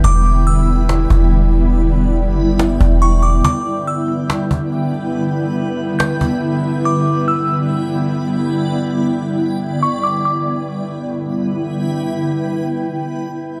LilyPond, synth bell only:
\new Staff \with { instrumentName = "Synth bell" } { \time 4/4 \key g \major \tempo 4 = 141 d'''4 e'''2. | r2. cis'''8 d'''8 | d'''4 e'''2. | r2 g'''2 |
d'''4 e'''2. | r2. cis'''8 d'''8 | d'''2. r4 | r1 | }